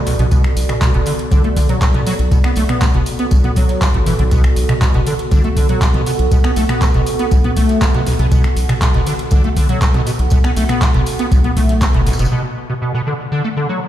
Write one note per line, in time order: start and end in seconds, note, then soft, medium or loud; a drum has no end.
0.00 12.28 B3 medium
0.00 12.28 F#4 medium
0.00 12.28 A4 medium
0.00 4.30 D5 medium
0.07 0.14 B1 loud
0.07 mid tom medium
0.07 open hi-hat loud
0.07 tambourine medium
0.19 0.27 B1 loud
0.19 0.26 B2 medium
0.19 closed hi-hat medium
0.19 closed hi-hat soft
0.31 0.42 B2 loud
0.31 kick loud
0.31 closed hi-hat soft
0.31 tambourine medium
0.44 finger snap medium
0.44 snare soft
0.44 closed hi-hat soft
0.56 0.64 B1 medium
0.56 open hi-hat loud
0.56 tambourine medium
0.69 0.73 B2 medium
0.69 finger snap medium
0.69 closed hi-hat medium
0.69 mid tom loud
0.81 0.92 B2 medium
0.81 kick loud
0.81 snare loud
0.81 clap loud
0.81 closed hi-hat soft
0.81 tambourine medium
0.94 1.02 F#1 medium
0.94 1.01 B2 loud
0.94 closed hi-hat soft
1.06 1.14 D3 medium
1.06 open hi-hat loud
1.06 tambourine medium
1.19 closed hi-hat medium
1.32 1.47 B1 loud
1.32 1.42 D3 loud
1.32 kick loud
1.32 closed hi-hat medium
1.32 tambourine medium
1.44 1.48 A3 medium
1.44 closed hi-hat soft
1.56 1.64 B1 medium
1.56 1.67 D3 medium
1.56 kick medium
1.56 open hi-hat loud
1.56 tambourine medium
1.69 1.79 F#3 medium
1.69 closed hi-hat soft
1.69 closed hi-hat medium
1.69 mid tom loud
1.82 kick loud
1.82 snare loud
1.82 clap loud
1.82 closed hi-hat medium
1.82 tambourine medium
1.94 2.02 B1 medium
1.94 2.01 B2 loud
1.94 closed hi-hat soft
1.94 mid tom medium
2.07 2.14 F#3 loud
2.07 snare soft
2.07 open hi-hat loud
2.07 tambourine medium
2.19 2.27 B1 loud
2.19 closed hi-hat soft
2.32 2.39 B2 medium
2.32 kick loud
2.32 closed hi-hat medium
2.32 tambourine medium
2.44 2.51 B3 medium
2.44 finger snap medium
2.44 snare soft
2.44 closed hi-hat soft
2.56 2.64 B1 loud
2.56 2.64 A3 medium
2.56 open hi-hat loud
2.56 tambourine medium
2.69 2.83 B3 medium
2.69 finger snap medium
2.69 closed hi-hat soft
2.69 mid tom loud
2.81 2.86 B2 loud
2.81 kick loud
2.81 snare loud
2.81 clap loud
2.81 closed hi-hat soft
2.81 tambourine medium
2.94 3.02 F#1 medium
2.94 3.01 B2 loud
2.94 closed hi-hat soft
3.06 open hi-hat loud
3.06 tambourine medium
3.19 3.26 B3 medium
3.19 closed hi-hat soft
3.31 3.47 B1 loud
3.31 3.39 B1 medium
3.31 kick loud
3.31 closed hi-hat soft
3.31 tambourine medium
3.44 3.51 B3 medium
3.44 closed hi-hat soft
3.44 mid tom medium
3.56 3.64 B1 medium
3.56 3.83 F#3 medium
3.56 kick medium
3.56 open hi-hat loud
3.56 tambourine medium
3.69 snare medium
3.69 closed hi-hat soft
3.81 3.86 B2 medium
3.81 kick loud
3.81 snare loud
3.81 clap loud
3.81 closed hi-hat medium
3.81 tambourine medium
3.94 4.10 A1 loud
3.94 3.98 A2 medium
3.94 closed hi-hat soft
4.06 4.14 E3 medium
4.06 mid tom medium
4.06 open hi-hat loud
4.06 tambourine medium
4.19 4.49 B1 loud
4.19 4.23 D3 medium
4.19 closed hi-hat soft
4.31 4.42 B2 loud
4.31 12.30 F#5 medium
4.31 kick loud
4.31 closed hi-hat medium
4.31 tambourine medium
4.44 finger snap medium
4.44 snare soft
4.44 closed hi-hat soft
4.56 4.64 B1 loud
4.56 open hi-hat loud
4.56 tambourine medium
4.69 4.73 B2 medium
4.69 finger snap medium
4.69 closed hi-hat medium
4.69 mid tom loud
4.82 4.92 B2 medium
4.82 kick loud
4.82 snare loud
4.82 clap loud
4.82 closed hi-hat soft
4.82 tambourine medium
4.94 5.02 F#1 medium
4.94 5.01 B2 loud
4.94 closed hi-hat soft
5.07 5.14 D3 medium
5.07 open hi-hat loud
5.07 tambourine medium
5.19 closed hi-hat soft
5.31 5.47 B1 loud
5.31 5.42 D3 loud
5.31 kick loud
5.31 closed hi-hat soft
5.31 tambourine medium
5.44 5.48 A3 medium
5.44 closed hi-hat soft
5.56 5.64 B1 medium
5.56 5.67 D3 medium
5.56 kick medium
5.56 open hi-hat loud
5.56 tambourine medium
5.69 5.80 F#3 medium
5.69 closed hi-hat soft
5.69 closed hi-hat medium
5.69 mid tom medium
5.82 kick loud
5.82 snare loud
5.82 clap loud
5.82 closed hi-hat medium
5.82 tambourine medium
5.94 6.02 B1 medium
5.94 6.01 B2 loud
5.94 closed hi-hat soft
5.94 mid tom loud
6.06 6.11 B2 medium
6.06 snare soft
6.06 open hi-hat loud
6.06 tambourine medium
6.19 6.27 B1 loud
6.19 closed hi-hat soft
6.31 6.39 B2 medium
6.31 kick loud
6.31 closed hi-hat medium
6.31 tambourine medium
6.44 6.51 B3 medium
6.44 finger snap medium
6.44 snare soft
6.44 closed hi-hat soft
6.56 6.64 B1 loud
6.56 6.64 A3 medium
6.56 open hi-hat loud
6.56 tambourine medium
6.69 6.83 B3 medium
6.69 finger snap medium
6.69 closed hi-hat medium
6.69 mid tom medium
6.82 6.86 B2 loud
6.82 kick loud
6.82 snare loud
6.82 clap loud
6.82 closed hi-hat medium
6.82 tambourine medium
6.94 7.02 F#1 medium
6.94 7.01 B2 loud
6.94 closed hi-hat soft
7.06 open hi-hat loud
7.06 tambourine medium
7.19 7.26 B3 medium
7.19 closed hi-hat medium
7.31 7.47 B1 loud
7.31 7.39 B1 medium
7.31 kick loud
7.31 closed hi-hat medium
7.31 tambourine medium
7.44 7.51 B3 medium
7.44 closed hi-hat soft
7.44 mid tom medium
7.56 7.64 B1 medium
7.56 7.83 A3 medium
7.56 kick medium
7.56 open hi-hat loud
7.56 tambourine medium
7.69 snare medium
7.69 closed hi-hat medium
7.81 7.86 B3 medium
7.81 kick loud
7.81 snare loud
7.81 clap loud
7.81 closed hi-hat medium
7.81 tambourine medium
7.94 8.02 B1 medium
7.94 8.01 B2 loud
7.94 closed hi-hat soft
8.07 8.14 B1 loud
8.07 mid tom medium
8.07 open hi-hat loud
8.07 tambourine medium
8.19 8.27 B1 loud
8.19 8.26 B2 loud
8.19 closed hi-hat soft
8.32 8.42 B2 loud
8.32 kick loud
8.32 closed hi-hat medium
8.32 tambourine medium
8.44 finger snap medium
8.44 snare soft
8.44 closed hi-hat soft
8.57 8.64 B1 loud
8.57 open hi-hat loud
8.57 tambourine medium
8.69 8.73 B2 medium
8.69 finger snap medium
8.69 closed hi-hat medium
8.69 mid tom medium
8.81 8.92 B2 medium
8.81 kick loud
8.81 snare loud
8.81 clap loud
8.81 closed hi-hat medium
8.81 tambourine medium
8.94 9.02 F#1 medium
8.94 9.01 B2 loud
8.94 closed hi-hat soft
9.07 9.14 D3 medium
9.07 open hi-hat loud
9.07 tambourine medium
9.19 closed hi-hat medium
9.31 9.47 B1 loud
9.31 9.42 D3 loud
9.31 kick loud
9.31 closed hi-hat medium
9.31 tambourine medium
9.44 9.48 A3 medium
9.44 closed hi-hat soft
9.56 9.64 B1 medium
9.56 9.67 D3 medium
9.56 kick medium
9.56 open hi-hat loud
9.56 tambourine medium
9.69 9.79 F#3 medium
9.69 closed hi-hat medium
9.69 closed hi-hat soft
9.69 mid tom medium
9.82 kick loud
9.82 snare loud
9.82 clap loud
9.82 closed hi-hat medium
9.82 tambourine loud
9.94 10.02 B1 medium
9.94 10.01 B2 loud
9.94 closed hi-hat soft
9.94 mid tom medium
10.07 10.11 B2 medium
10.07 snare soft
10.07 open hi-hat loud
10.07 tambourine medium
10.19 10.27 B1 loud
10.19 closed hi-hat medium
10.30 10.39 B2 medium
10.30 kick loud
10.30 closed hi-hat medium
10.30 tambourine medium
10.44 10.51 B3 medium
10.44 finger snap medium
10.44 snare soft
10.44 closed hi-hat soft
10.57 10.64 B1 loud
10.57 10.64 A3 medium
10.57 open hi-hat loud
10.57 tambourine medium
10.69 10.83 B3 medium
10.69 finger snap medium
10.69 closed hi-hat medium
10.69 mid tom medium
10.82 10.86 B2 loud
10.82 kick loud
10.82 snare loud
10.82 clap loud
10.82 closed hi-hat medium
10.82 tambourine medium
10.94 11.02 F#1 medium
10.94 11.01 B2 loud
10.94 closed hi-hat soft
11.06 open hi-hat loud
11.06 tambourine medium
11.19 11.26 B3 medium
11.19 closed hi-hat medium
11.32 11.47 B1 loud
11.32 11.39 B1 medium
11.32 kick loud
11.32 closed hi-hat medium
11.32 tambourine medium
11.44 11.51 B3 medium
11.44 closed hi-hat soft
11.44 mid tom medium
11.57 11.87 B1 loud
11.57 11.83 A3 medium
11.57 kick medium
11.57 mid tom medium
11.57 open hi-hat loud
11.57 tambourine medium
11.69 snare medium
11.69 closed hi-hat medium
11.81 11.86 B3 medium
11.81 kick loud
11.81 snare loud
11.81 clap loud
11.81 closed hi-hat medium
11.81 tambourine medium
11.94 12.10 F#1 loud
11.94 12.01 B2 loud
11.94 closed hi-hat soft
12.06 12.14 B1 loud
12.06 snare medium
12.06 mid tom medium
12.06 open hi-hat loud
12.06 tambourine medium
12.12 snare medium
12.12 tambourine medium
12.19 12.27 F#1 medium
12.19 12.26 B2 loud
12.19 snare medium
12.19 closed hi-hat medium
12.19 tambourine medium
12.25 snare medium
12.25 tambourine medium
12.32 13.88 B2 medium
12.32 12.42 B2 loud
12.32 13.88 B3 medium
12.32 13.88 A4 medium
12.32 13.88 D5 medium
12.70 12.73 B2 medium
12.82 12.92 B2 medium
12.94 13.01 B2 loud
13.07 13.14 D3 medium
13.32 13.42 D3 loud
13.44 13.48 A3 medium
13.57 13.67 D3 medium
13.69 13.79 F#3 medium